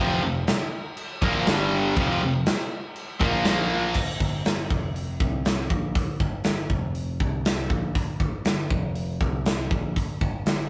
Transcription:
Already playing: overdriven electric guitar F2 C3
0.00 picked electric bass F1, overdriven electric guitar F3
0.22 picked electric bass F1, overdriven electric guitar F2 C3
0.47 snare, crash
0.97 crash
1.22 picked electric bass A#1, overdriven electric guitar A#2 F3 A#3, kick
1.47 picked electric bass G1, overdriven electric guitar G2 D3 G3, snare, crash
1.96 picked electric bass F1, overdriven electric guitar F2 C3 F3, kick, crash
2.21 picked electric bass F1, overdriven electric guitar F2 C3
2.46 snare, crash
2.59 snare
2.96 crash
3.20 picked electric bass A#1, overdriven electric guitar A#2 F3 A#3, kick
3.45 picked electric bass A#1, overdriven electric guitar A#2 F3 A#3, snare, crash
3.94 kick, crash
4.20 picked electric bass G1, kick
4.45 picked electric bass G1, snare, open hi-hat
4.70 picked electric bass F1, kick
4.96 open hi-hat
5.20 picked electric bass C2, kick
5.45 snare, open hi-hat
5.70 picked electric bass A#1, kick
5.95 kick, open hi-hat
6.20 picked electric bass G1, kick
6.44 picked electric bass G1, snare, open hi-hat
6.70 picked electric bass F1, kick
6.95 open hi-hat
7.20 picked electric bass C2, kick
7.45 snare, open hi-hat
7.70 picked electric bass A#1, kick
7.95 kick, open hi-hat
8.20 picked electric bass G1, kick
8.45 picked electric bass G1, snare, open hi-hat
8.70 picked electric bass F1, kick
8.95 open hi-hat
9.21 picked electric bass C2, kick
9.46 snare, open hi-hat
9.71 picked electric bass A#1, kick
9.96 kick, open hi-hat
10.21 picked electric bass G1, kick
10.46 picked electric bass G1, snare, open hi-hat

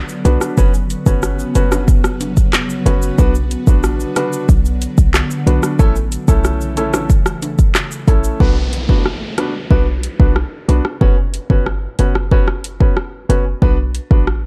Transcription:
Already playing: ambient pad D3 F#3 B3
0.09 shaker
0.25 808-style bass B1, grand piano B3 D4 F#4 B4, closed hi-hat, shaker
0.41 cross-stick, shaker
0.57 808-style bass F#1, ambient pad C#3, grand piano B3 C#4 F#4 B4, kick, shaker
0.74 shaker
0.90 closed hi-hat, shaker
1.06 808-style bass G1, grand piano B3 C#4 F#4 B4, kick, shaker
1.23 cross-stick, shaker
1.39 shaker
1.55 808-style bass F#1, grand piano B3 C#4 F#4 B4, closed hi-hat, shaker
1.72 cross-stick, high timbale, shaker
1.88 kick, shaker
2.04 cross-stick, shaker
2.21 closed hi-hat, high timbale, shaker
2.37 kick, shaker
2.53 cross-stick, clap, shaker
2.70 shaker
2.86 808-style bass F#1, grand piano B3 C#4 F#4 B4, closed hi-hat, shaker
3.02 shaker
3.18 808-style bass B1, ambient pad D3, grand piano B3 D4 F#4 B4, kick, shaker
3.35 shaker
3.51 closed hi-hat, shaker
3.67 808-style bass A1, grand piano B3 D4 F#4 B4, kick, shaker
3.83 cross-stick, shaker
4.00 shaker
4.16 grand piano B3 D4 F#4 B4, cross-stick, closed hi-hat, shaker
4.33 shaker
4.49 808-style bass B1, kick, shaker
4.65 shaker
4.82 closed hi-hat, shaker
4.98 808-style bass B1, kick, shaker
5.14 cross-stick, clap, shaker
5.31 shaker
5.47 808-style bass B1, grand piano B3 D4 F#4 B4, closed hi-hat, shaker
5.63 cross-stick, shaker
5.79 808-style bass A1, ambient pad C#3 E3 A3, grand piano A3 C#4 E4 A4, kick, shaker
5.96 shaker
6.12 closed hi-hat, shaker
6.28 808-style bass B1, grand piano A3 C#4 E4 A4, kick, shaker
6.44 cross-stick, shaker
6.61 shaker
6.77 808-style bass A1, grand piano A3 C#4 E4 A4, closed hi-hat, shaker
6.94 cross-stick, high timbale, shaker
7.10 kick, shaker
7.26 cross-stick, shaker
7.42 closed hi-hat, high timbale, shaker
7.58 kick, shaker
7.75 cross-stick, clap, shaker
7.91 shaker
8.07 808-style bass A1, grand piano A3 C#4 E4 A4, kick, closed hi-hat, shaker
8.24 shaker
8.40 808-style bass B1, grand piano B3 D4 F#4 B4, kick, downlifter
8.73 closed hi-hat
8.89 808-style bass A1, grand piano B3 D4 F#4 B4, kick
9.06 cross-stick
9.38 grand piano B3 D4 F#4 B4, cross-stick, closed hi-hat
9.70 808-style bass B1, grand piano B3 D4 F#4 B4, kick
10.03 closed hi-hat
10.19 808-style bass B1, grand piano B3 D4 F#4 B4, kick
10.36 cross-stick
10.68 808-style bass B1, grand piano B3 D4 F#4 B4, closed hi-hat
10.85 cross-stick
11.01 808-style bass F#1, grand piano B3 C#4 F#4 B4, kick
11.34 closed hi-hat
11.50 808-style bass G1, grand piano B3 C#4 F#4 B4, kick
11.66 cross-stick
11.99 808-style bass F#1, grand piano B3 C#4 F#4 B4, closed hi-hat
12.15 cross-stick
12.31 grand piano B3 C#4 F#4 B4, kick
12.48 cross-stick
12.64 closed hi-hat
12.80 grand piano B3 C#4 F#4 B4, kick
12.97 cross-stick
13.29 808-style bass F#1, grand piano B3 C#4 F#4 B4, closed hi-hat
13.62 808-style bass B1, grand piano B3 D4 F#4 B4, kick
13.95 closed hi-hat
14.11 808-style bass A1, grand piano B3 D4 F#4 B4, kick
14.27 cross-stick

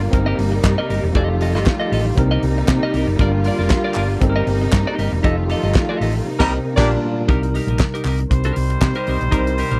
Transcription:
Already playing: string section D3 A#3 F4, tine electric piano G3 D4 F4 A#4
0.02 muted clean electric guitar stroke
0.11 fingered electric bass G1, string section C3 G3 D#4, tine electric piano C4 D#4 A#4, muted clean electric guitar stroke, kick, closed hi-hat
0.26 clean electric guitar G4 A#4 D#5
0.38 fingered electric bass G1, muted clean electric guitar stroke, open hi-hat
0.52 muted clean electric guitar stroke
0.63 fingered electric bass G2, muted clean electric guitar stroke, kick, snare, clap, closed hi-hat
0.78 clean electric guitar G4 A#4 D#5
0.90 fingered electric bass G1, clean electric guitar G4 A#4 D#5, open hi-hat
1.03 fingered electric bass E1, muted clean electric guitar stroke
1.13 fingered electric bass F1, string section D#3 G3 A3 F4, tine electric piano F3 D#4 G4 A4, clean electric guitar G4 A4 D#5, kick, closed hi-hat
1.30 muted clean electric guitar stroke
1.41 clean electric guitar G4 A4 D#5, open hi-hat
1.55 fingered electric bass G1, clean electric guitar G4 A4 D#5, snare
1.66 kick, snare, clap, closed hi-hat
1.80 clean electric guitar G4 A4 D#5
1.92 fingered electric bass A1, clean electric guitar G4 A4 D#5, open hi-hat
2.07 muted clean electric guitar stroke
2.15 fingered electric bass C2, tine electric piano C3 C4 D#4 A#4, string section C3 A#3 D#4, muted clean electric guitar stroke, kick, closed hi-hat
2.31 clean electric guitar G4 A#4 D#5
2.43 fingered electric bass C2, muted clean electric guitar stroke, open hi-hat
2.58 muted clean electric guitar stroke
2.68 fingered electric bass C3, muted clean electric guitar stroke, kick, snare, clap, closed hi-hat
2.83 clean electric guitar G4 A#4 D#5
2.94 fingered electric bass C2, clean electric guitar G4 A#4 D#5, open hi-hat
3.07 fingered electric bass F#1, muted clean electric guitar stroke
3.18 fingered electric bass G1, string section D3 F4, tine electric piano G3 D4 F4 A#4, clean electric guitar F4 A#4 D5, kick, closed hi-hat
3.33 muted clean electric guitar stroke
3.44 clean electric guitar F4 A#4 D5, open hi-hat
3.59 fingered electric bass F1, clean electric guitar F4 A#4 D5
3.70 muted clean electric guitar stroke, kick, snare, clap, closed hi-hat
3.84 clean electric guitar F4 A#4 D5
3.94 fingered electric bass G1, clean electric guitar F4 A#4, clap, open hi-hat
3.98 clean electric guitar D5
4.10 muted clean electric guitar stroke
4.21 fingered electric bass G1, string section C3 D#4, tine electric piano C4 D#4 A4, muted clean electric guitar stroke, kick, closed hi-hat
4.30 tine electric piano A#4
4.36 clean electric guitar G4 A#4 D#5
4.47 fingered electric bass G1, muted clean electric guitar stroke, open hi-hat
4.62 muted clean electric guitar stroke
4.72 fingered electric bass G2, muted clean electric guitar stroke, kick, snare, clap, closed hi-hat
4.87 clean electric guitar G4 A#4 D#5
4.98 fingered electric bass G1, clean electric guitar G4 A#4 D#5, open hi-hat
5.12 fingered electric bass E1, muted clean electric guitar stroke
5.23 fingered electric bass F1, string section D#3 A3 F4, tine electric piano F3 D#4 G4 A4, clean electric guitar G4 A4 D#5, kick, closed hi-hat
5.37 muted clean electric guitar stroke
5.50 clean electric guitar G4 A4 D#5, open hi-hat
5.63 fingered electric bass G1, clean electric guitar G4 A4 D#5
5.74 kick, snare, clap, closed hi-hat
5.89 clean electric guitar G4 A4 D#5
6.01 fingered electric bass A1, clean electric guitar G4 A4 D#5, open hi-hat
6.15 muted clean electric guitar stroke
6.26 string section C3 A#3 D#4
6.39 fingered electric bass C2, tine electric piano C3 C4 D#4 A#4, horn section G3 D#4 A#4, clean electric guitar G4 A#4 D#5, kick, snare, crash
6.76 fingered electric bass A#1, tine electric piano A#2 G3 D4, string section D3 F4, horn section A#3 G4 D5, clean electric guitar D4 G4 A#4, kick, snare, crash
6.85 tine electric piano A#4
7.27 fingered electric bass C2, tine electric piano C3 G3 D#4 A#4, clean electric guitar D#4 G4 A#4, kick, closed hi-hat
7.43 muted clean electric guitar stroke, closed hi-hat
7.54 clean electric guitar D#4 G4 A#4, open hi-hat
7.67 fingered electric bass A#1, clean electric guitar D#4 G4 A#4, closed hi-hat
7.79 kick, snare, clap
7.94 clean electric guitar D#4 G4 A#4, closed hi-hat
8.05 fingered electric bass C2, clean electric guitar D#4 G4 A#4, clap, open hi-hat
8.19 muted clean electric guitar stroke, closed hi-hat
8.31 fingered electric bass C2, horn section G3 D#4 C5, muted clean electric guitar stroke, kick, closed hi-hat
8.44 clean electric guitar D#4 G4 A#4, closed hi-hat
8.56 fingered electric bass C2, muted clean electric guitar stroke, open hi-hat
8.70 muted clean electric guitar stroke, closed hi-hat
8.81 fingered electric bass C3, muted clean electric guitar stroke, kick, snare, clap
8.95 clean electric guitar D#4 G4 A#4, closed hi-hat
9.07 fingered electric bass C2, clean electric guitar D#4 G4 A#4, open hi-hat
9.21 fingered electric bass B1, muted clean electric guitar stroke, closed hi-hat
9.31 fingered electric bass C2, tine electric piano C3 G3 D#4 A#4, clean electric guitar D#4 G4 A#4, kick, closed hi-hat
9.46 muted clean electric guitar stroke, closed hi-hat
9.58 clean electric guitar D#4 G4 A#4, open hi-hat
9.71 fingered electric bass A#1, clean electric guitar D#4 G4 A#4, closed hi-hat

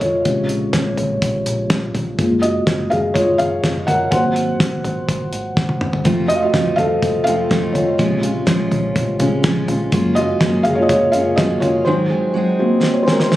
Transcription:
Already playing: felt piano F3 A3 C4 F#4 A4 D#5 F5
0.00 fingered electric bass F1, felt piano F4 C#5, closed hi-hat, floor tom
0.25 fingered electric bass A#1, felt piano C3 C#3 G#3, kick, closed hi-hat
0.49 closed hi-hat
0.73 fingered electric bass A#1, kick, snare, closed hi-hat
0.97 fingered electric bass A#1, closed hi-hat, floor tom
1.22 fingered electric bass A#1, kick, closed hi-hat
1.46 fingered electric bass A#1, closed hi-hat
1.70 fingered electric bass A#1, kick, snare, closed hi-hat
1.94 fingered electric bass A#1, closed hi-hat, floor tom
2.18 fingered electric bass F#1, felt piano G#3 A#3 F4, kick, closed hi-hat
2.42 felt piano F#4 D#5, closed hi-hat
2.67 fingered electric bass F#1, kick, snare, closed hi-hat
2.90 fingered electric bass F#1, felt piano G#4 F5, closed hi-hat, floor tom
3.14 fingered electric bass F#1, felt piano F4 C#5, kick, closed hi-hat
3.38 fingered electric bass F#1, felt piano G#4 F5, closed hi-hat, floor tom
3.63 fingered electric bass F#1, kick, snare, closed hi-hat
3.87 fingered electric bass F#1, felt piano A#4 F#5, closed hi-hat, floor tom
4.11 fingered electric bass G#1, felt piano F#3 A#3 C4 C5 F#5, kick, closed hi-hat
4.36 closed hi-hat
4.60 fingered electric bass G#1, kick, snare, closed hi-hat
4.84 fingered electric bass G#1, closed hi-hat, floor tom
5.08 fingered electric bass G#1, kick, closed hi-hat
5.32 fingered electric bass G#1, closed hi-hat
5.57 fingered electric bass G#1, kick, snare
5.69 high tom
5.81 fingered electric bass G#1, mid tom
5.93 floor tom
6.04 fingered electric bass F1, steel-string acoustic guitar F2 C3 F3 A3 C4 F4, felt piano A3 C4 F4, kick, closed hi-hat
6.28 steel-string acoustic guitar F3 A3 C4 F4, felt piano F#4 D#5, closed hi-hat
6.36 felt piano F5
6.43 felt piano F#4 D#5
6.53 fingered electric bass F1, steel-string acoustic guitar F3 A3 C4 F4, kick, snare, closed hi-hat
6.76 fingered electric bass F1, felt piano A4 F5, closed hi-hat, floor tom
7.02 fingered electric bass F1, kick, closed hi-hat
7.24 fingered electric bass F1, steel-string acoustic guitar C4 F4, felt piano A4 F5, closed hi-hat
7.28 steel-string acoustic guitar F3 A3
7.49 fingered electric bass F1, steel-string acoustic guitar F3 A3 C4 F4, kick, snare, closed hi-hat
7.72 fingered electric bass F1, steel-string acoustic guitar C4 F4, felt piano F4 C#5, closed hi-hat, floor tom
7.77 steel-string acoustic guitar F3 A3
7.98 fingered electric bass A#1, steel-string acoustic guitar A#2 F3 G#3 C#4 F4, felt piano C3 C#3 G#3, kick, closed hi-hat
8.22 steel-string acoustic guitar G#3 C#4 F4, closed hi-hat
8.46 fingered electric bass A#1, steel-string acoustic guitar F3 G#3 C#4 F4, kick, snare, closed hi-hat
8.71 fingered electric bass A#1, closed hi-hat, floor tom
8.96 fingered electric bass A#1, kick, closed hi-hat
9.19 fingered electric bass A#1, felt piano C#3 G#3 C4, steel-string acoustic guitar G#3 C#4 F4, closed hi-hat, floor tom
9.43 fingered electric bass A#1, steel-string acoustic guitar F3 G#3 C#4 F4, kick, snare, closed hi-hat
9.68 fingered electric bass A#1, steel-string acoustic guitar G#3 C#4 F4, closed hi-hat, floor tom
9.92 fingered electric bass F#1, felt piano F3 G#3 A#3, steel-string acoustic guitar F#3 A#3 C#4 F4, kick, closed hi-hat
10.15 steel-string acoustic guitar C#4 F4, felt piano F#4 D#5, closed hi-hat
10.19 steel-string acoustic guitar A#3
10.40 fingered electric bass F#1, steel-string acoustic guitar F#3 A#3 C#4 F4, kick, snare, closed hi-hat
10.63 fingered electric bass F#1, felt piano G#4 F5, closed hi-hat, floor tom
10.75 felt piano F4 C#5
10.82 felt piano D#5
10.89 fingered electric bass F#1, felt piano F4 C#5, kick, closed hi-hat
11.12 fingered electric bass F#1, steel-string acoustic guitar C#4 F4, felt piano G#4 F5, closed hi-hat
11.16 steel-string acoustic guitar A#3
11.36 fingered electric bass F#1, steel-string acoustic guitar F#3 A#3 C#4, felt piano F#4 D#5, kick, snare, closed hi-hat
11.40 steel-string acoustic guitar F4
11.60 fingered electric bass F#1, steel-string acoustic guitar C#4 F4, felt piano F4 C#5, closed hi-hat, floor tom
11.64 steel-string acoustic guitar A#3
11.85 steel-string acoustic guitar G#2 D#3 F#3 G#3 C4 G#4, felt piano D#4 C5
12.10 steel-string acoustic guitar F#3 G#3 C4 G#4
12.34 steel-string acoustic guitar F#3 G#3 C4 G#4
12.59 felt piano F#3 A#3 C4
12.83 snare
12.93 felt piano C#5
13.03 steel-string acoustic guitar G#4, felt piano C5
13.08 steel-string acoustic guitar F#3 G#3 C4, felt piano A#4, snare
13.20 felt piano C5, snare
13.31 steel-string acoustic guitar F#3 G#3 C4, snare

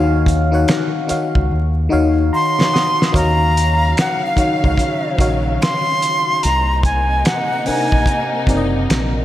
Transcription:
Already playing: fingered electric bass D#2, fm electric piano D#3 D#4 F#4 C#5 F5 G#5
0.26 kick, closed hi-hat
0.51 fm electric piano D#3 D#4 F#4 C#5 F#5
0.68 finger snap, snare, closed hi-hat
1.07 fm electric piano D#3 D#4 F#4 C#5 F5, muted fingered electric bass stroke, closed hi-hat
1.35 fingered electric bass C#2, kick
1.52 fingered electric bass D#2
1.89 fingered electric bass D#2, fm electric piano D#3 D#4 F#4 C#5 F5
2.33 fm electric piano A#5 C6, flute C6
2.59 fm electric piano C#6, snare
2.73 fm electric piano F#5 D#6, snare
2.99 fm electric piano C#6, snare
3.12 fingered electric bass D#2, string section C#3 F#3 F5, fm electric piano D#3 D#4 F#4 C#5 F5, kick, closed hi-hat
3.17 flute A#5
3.57 closed hi-hat
3.97 flute F#5, finger snap, snare, closed hi-hat
4.26 flute F5
4.36 fm electric piano D#3 D#4 F#4 C#5 F5, muted fingered electric bass stroke, kick, closed hi-hat
4.40 flute F5
4.62 fingered electric bass C#2, fm electric piano D#3 D#4 F#4 C#5 F5, kick
4.78 kick, closed hi-hat
5.18 fingered electric bass A#1, fm electric piano D#3 D#4 F#4 C#5 F5, kick, closed hi-hat
5.62 flute C6, finger snap, snare, closed hi-hat
6.02 closed hi-hat
6.42 fingered electric bass C2, string section C3 A#3 D#4, flute A#5, closed hi-hat
6.83 flute G#5, kick, closed hi-hat
7.25 flute F#5, finger snap, snare, closed hi-hat
7.65 fm electric piano C3 C4 D4 A#4 F#5, flute G#5, muted fingered electric bass stroke, open hi-hat
7.73 fm electric piano D#4
7.92 fingered electric bass A#1, kick
8.06 kick, closed hi-hat
8.47 fingered electric bass F#1, fm electric piano C3 C4 D#4 A#4 D5, kick, closed hi-hat
8.57 fm electric piano D#5
8.90 fingered electric bass A#1, finger snap, snare, closed hi-hat

